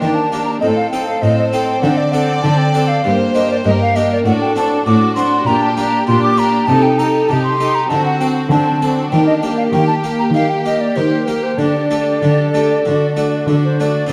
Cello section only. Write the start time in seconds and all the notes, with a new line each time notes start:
0.03 D#3
0.62 A2
1.23 A2
1.84 D3
2.44 D3
3.05 G2
3.66 G2
4.26 A2
4.86 A2
5.47 A#2
6.08 A#2
6.68 C3
7.29 C3
7.90 D3
8.51 D3
9.12 D#3
9.73 D#3
10.34 D#3
10.97 D#3
11.60 D3
12.23 D3
12.86 D3
13.49 D3